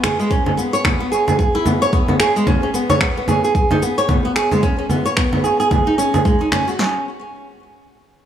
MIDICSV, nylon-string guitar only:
0, 0, Header, 1, 2, 480
1, 0, Start_track
1, 0, Tempo, 540541
1, 271, Time_signature, 4, 2, 24, 8
1, 7330, End_track
2, 0, Start_track
2, 0, Title_t, "Nylon-string guitar"
2, 0, Program_c, 0, 24
2, 31, Note_on_c, 0, 68, 71
2, 158, Note_off_c, 0, 68, 0
2, 173, Note_on_c, 0, 56, 67
2, 261, Note_off_c, 0, 56, 0
2, 271, Note_on_c, 0, 61, 91
2, 400, Note_off_c, 0, 61, 0
2, 410, Note_on_c, 0, 61, 64
2, 467, Note_off_c, 0, 61, 0
2, 509, Note_on_c, 0, 59, 65
2, 644, Note_off_c, 0, 59, 0
2, 650, Note_on_c, 0, 73, 93
2, 745, Note_off_c, 0, 73, 0
2, 750, Note_on_c, 0, 59, 76
2, 878, Note_off_c, 0, 59, 0
2, 891, Note_on_c, 0, 59, 73
2, 948, Note_off_c, 0, 59, 0
2, 991, Note_on_c, 0, 68, 72
2, 1118, Note_off_c, 0, 68, 0
2, 1133, Note_on_c, 0, 68, 74
2, 1221, Note_off_c, 0, 68, 0
2, 1231, Note_on_c, 0, 68, 68
2, 1365, Note_off_c, 0, 68, 0
2, 1375, Note_on_c, 0, 64, 93
2, 1462, Note_off_c, 0, 64, 0
2, 1474, Note_on_c, 0, 59, 67
2, 1607, Note_off_c, 0, 59, 0
2, 1615, Note_on_c, 0, 73, 94
2, 1707, Note_off_c, 0, 73, 0
2, 1715, Note_on_c, 0, 59, 76
2, 1840, Note_off_c, 0, 59, 0
2, 1856, Note_on_c, 0, 59, 68
2, 1910, Note_off_c, 0, 59, 0
2, 1953, Note_on_c, 0, 68, 70
2, 2079, Note_off_c, 0, 68, 0
2, 2097, Note_on_c, 0, 56, 68
2, 2184, Note_off_c, 0, 56, 0
2, 2194, Note_on_c, 0, 61, 90
2, 2327, Note_off_c, 0, 61, 0
2, 2336, Note_on_c, 0, 61, 71
2, 2390, Note_off_c, 0, 61, 0
2, 2432, Note_on_c, 0, 59, 68
2, 2566, Note_off_c, 0, 59, 0
2, 2574, Note_on_c, 0, 73, 90
2, 2667, Note_off_c, 0, 73, 0
2, 2676, Note_on_c, 0, 59, 69
2, 2801, Note_off_c, 0, 59, 0
2, 2819, Note_on_c, 0, 59, 70
2, 2872, Note_off_c, 0, 59, 0
2, 2916, Note_on_c, 0, 68, 64
2, 3041, Note_off_c, 0, 68, 0
2, 3059, Note_on_c, 0, 68, 73
2, 3145, Note_off_c, 0, 68, 0
2, 3297, Note_on_c, 0, 63, 94
2, 3383, Note_off_c, 0, 63, 0
2, 3395, Note_on_c, 0, 59, 66
2, 3527, Note_off_c, 0, 59, 0
2, 3533, Note_on_c, 0, 73, 85
2, 3627, Note_off_c, 0, 73, 0
2, 3634, Note_on_c, 0, 59, 72
2, 3760, Note_off_c, 0, 59, 0
2, 3773, Note_on_c, 0, 59, 67
2, 3829, Note_off_c, 0, 59, 0
2, 3871, Note_on_c, 0, 68, 70
2, 3998, Note_off_c, 0, 68, 0
2, 4014, Note_on_c, 0, 56, 66
2, 4102, Note_off_c, 0, 56, 0
2, 4110, Note_on_c, 0, 61, 89
2, 4239, Note_off_c, 0, 61, 0
2, 4250, Note_on_c, 0, 61, 63
2, 4307, Note_off_c, 0, 61, 0
2, 4350, Note_on_c, 0, 59, 63
2, 4485, Note_off_c, 0, 59, 0
2, 4489, Note_on_c, 0, 73, 92
2, 4584, Note_off_c, 0, 73, 0
2, 4588, Note_on_c, 0, 59, 70
2, 4717, Note_off_c, 0, 59, 0
2, 4731, Note_on_c, 0, 59, 67
2, 4788, Note_off_c, 0, 59, 0
2, 4829, Note_on_c, 0, 68, 68
2, 4957, Note_off_c, 0, 68, 0
2, 4971, Note_on_c, 0, 68, 69
2, 5059, Note_off_c, 0, 68, 0
2, 5069, Note_on_c, 0, 68, 68
2, 5204, Note_off_c, 0, 68, 0
2, 5212, Note_on_c, 0, 63, 93
2, 5301, Note_off_c, 0, 63, 0
2, 5311, Note_on_c, 0, 61, 80
2, 5445, Note_off_c, 0, 61, 0
2, 5451, Note_on_c, 0, 68, 63
2, 5508, Note_off_c, 0, 68, 0
2, 5551, Note_on_c, 0, 56, 71
2, 5685, Note_off_c, 0, 56, 0
2, 5691, Note_on_c, 0, 63, 67
2, 5785, Note_off_c, 0, 63, 0
2, 5789, Note_on_c, 0, 61, 69
2, 5917, Note_off_c, 0, 61, 0
2, 5928, Note_on_c, 0, 66, 62
2, 6019, Note_off_c, 0, 66, 0
2, 6029, Note_on_c, 0, 61, 74
2, 6253, Note_off_c, 0, 61, 0
2, 7330, End_track
0, 0, End_of_file